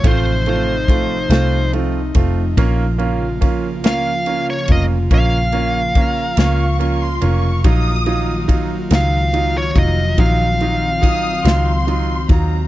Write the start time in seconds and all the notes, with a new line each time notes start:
Already playing: C3 F3 A3
0.03 A1 A3 C4 D#4 F4, kick, ride
0.08 C5
0.46 A3 C4 F4, ride
0.88 A3 C4 F4, kick, ride
1.30 C2 A3 C4 F4, snare, ride
1.73 A3 C4 F4, ride
2.15 F1 A3 C4 F4, kick, ride
2.57 A#1 C#3 A#3 C#4 F4, kick, ride
2.98 A#3 C#4 F4, ride
3.41 A#3 C#4 F4, kick, ride
3.83 C#2 A#3 C#4 F4 F5, snare, ride
4.26 A#3 C#4 F4, ride
4.50 C#5
4.68 F1 A#3 C#4 F4 D#5, kick, ride
5.11 A#1 A#3 C#4 F4 F5, kick, ride
5.52 A#3 C#4 F4, ride
5.95 A#3 C#4 F4 A#5, kick, ride
6.37 C#2 A#3 C#4 F4 C#6, snare, ride
6.79 A#3 C#4 F4, ride
7.02 C6
7.21 F1 A#3 C#4 F4 C#6, ride
7.64 A#1 D#3 F#3 D#4 F4 D#6, kick, ride
8.06 F#3 D#4 F4, ride
8.48 F#3 D#4 F4, kick, ride
8.91 C#2 F#3 D#4 F4, snare, ride
8.95 F5
9.33 F#3 D#4 F4, ride
9.57 C#5
9.75 F1 F#3 D#4 F4 D#5, kick, ride
10.18 A#1 F#3 C4 D#4 F4 F5, kick, ride
10.61 F#3 D#4 F4, ride
11.02 F#3 D#4 F4 D#6, kick, ride
11.44 C#2 F#3 D#4 F4 C6, snare, ride
11.87 F#3 D#4 F4, ride
12.29 D#2 F#3 D#4 F4 A#5, kick, ride